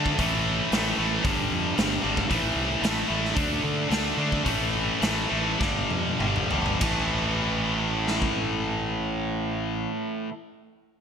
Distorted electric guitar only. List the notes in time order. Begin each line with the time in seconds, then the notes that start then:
Already playing: D3 A3 D4
0.18 A2 E3 A3
0.72 A2 E3 A3
0.98 A2 E3 A3
1.24 G2 D3 G3
1.77 G2 D3 G3
2.02 G2 D3 G3
2.28 A2 E3 A3
2.81 A2 E3 A3
3.08 A2 E3 A3
3.34 D3 A3 D4
3.89 D3 A3 D4
4.17 D3 A3 D4
4.44 A2 E3 A3
5.00 A2 E3 A3
5.30 A2 E3 A3
5.58 G2 D3 G3
6.19 G2 D3 G3
6.49 G2 D3 G3
6.79 A2 E3
6.84 A3